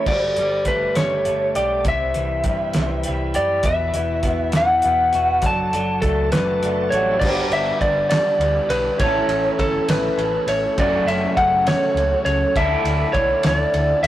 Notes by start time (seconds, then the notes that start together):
0.05 G1 G3 D4 G4 A4 D5, kick, crash
0.09 G3
0.36 G1 G3, closed hi-hat
0.65 G1 G3 A3 D4 G4 A4 B4, kick, closed hi-hat
0.95 G1 G3 G4 A4 C#5, snare, closed hi-hat
1.25 G1 A3, closed hi-hat
1.55 B1 D4 G4 A4 D5, closed hi-hat
1.85 C2 C3 E3 G3 C4 E4 B4 E5, kick, closed hi-hat
2.14 C2 E3, closed hi-hat
2.44 G2 G3 C4 E4, kick, closed hi-hat
2.49 B4
2.73 C2 C3 E3 G3 C4 E4 B4, snare, closed hi-hat
3.03 G3, closed hi-hat
3.08 C2
3.34 F#2 G3 C4 E4 G4 B4 D5, closed hi-hat
3.63 E1 E2 E3 B3 E4 F#4 B4 E5, kick, closed hi-hat
3.67 B4
3.93 E1 E3 F#4 B4 E5, closed hi-hat
4.22 E1 B3 E4 F#4 B4 E5, kick, closed hi-hat
4.27 F#4 B4
4.52 E1 B4, snare, closed hi-hat
4.57 E3 B3 E4 F#4 F#5
4.82 E1 B3 F#4 B4 E5, closed hi-hat
5.12 E1 F#4 B4 E5, closed hi-hat
5.17 E4
5.41 F#1 F#3 D4 F#4 A4 D5, kick, closed hi-hat
5.45 A3 D4 F#4 A4 A5
5.73 F#1 F#3 F#4 A4 D5, closed hi-hat
6.02 C#2 A3 D4 F#4 A4 D5, kick, closed hi-hat
6.07 F#4 A4
6.31 F#1 D4 F#4 A4 B4, snare, closed hi-hat
6.36 F#3 A3
6.62 F#1 A3 F#4 A4 D5, closed hi-hat
6.91 A1 F#4 A4 C#5 D5, closed hi-hat
6.95 G3 A3 D4 F#4
7.00 B3 C4
7.06 D4 E4
7.12 F4 G4
7.18 G1 G2 G3 G4 A4 B4 D5, kick, crash
7.22 D3 B3 D4 G4 B4 C5 D5
7.26 G4
7.50 G1 G3 D4 G4 B4 D5 E5, ride
7.54 B4
7.66 D4 G4 B4
7.80 G1 D4 G4 B4 D5, kick, ride
7.97 D4 G4 B4
8.10 G3 G4 B4 D5, snare, ride
8.39 D2 G3 D4 G4 B4 D5, ride
8.43 G4 B4
8.56 D4 G4 B4
8.68 B1 D4 G4 B4 C#5, ride
8.86 D4 G4 B4
8.95 C#4 E4 A4 C#5
8.99 A1 A2 E3 A3 C#4 E4 A4 C#5, kick, ride
9.26 A1 C#4 E4 A4 E5, ride
9.31 C#4 E4 A4
9.45 A3 C#4 E4 A4
9.55 G1 C#4 E4 A4 C#5, kick, ride
9.60 A4
9.74 A3 C#4 E4 A4
9.88 A1 A2 E3 A3 C#4 E4 A4 B4, snare, ride
10.16 A1 A3 C#4 E4 A4 C#5, ride
10.20 C#4 E4 A4
10.33 A3 C#4 E4 A4
10.47 A1 C#4 E4 A4 C#5 E5, ride
10.63 A3 C#4 E4 A4
10.77 F#1 F#2 C#3 F#3 A3 C#4 F#4 A4 C#5 D5, kick, ride
11.05 F#1 A3 C#4 F#4 A4 C#5 E5, ride
11.10 F#4 A4
11.23 A4
11.36 F#1 C#4 F#4 A4 C#5 F#5, kick, ride
11.53 F#4 A4
11.57 C#4
11.67 F#3 A3 C#4 F#4 A4 C#5, snare, ride
11.94 C#2 A3 C#4 F#4 A4 C#5, ride
11.99 F#4 A4
12.11 C#4 F#4 A4
12.25 C#2 C#4 F#4 A4 C#5, ride
12.39 F#4 A4
12.43 C#4
12.55 D2 D3 A3 D4 E4 A4 D5 E5, kick, ride
12.84 D2 A3 D4 E4 A4 D5, ride
12.99 D4 E4 A4
13.13 B1 D4 E4 A4 C#5 D5, kick, ride
13.29 E4 A4
13.43 D2 D3 A3 D4 E4 A4 D5, snare, ride
13.72 D2 A3 D4 E4 A4 D5, ride
13.76 E4 A4
13.88 D4 E4 A4
14.03 D2 D4 E4 A4 D5 E5, ride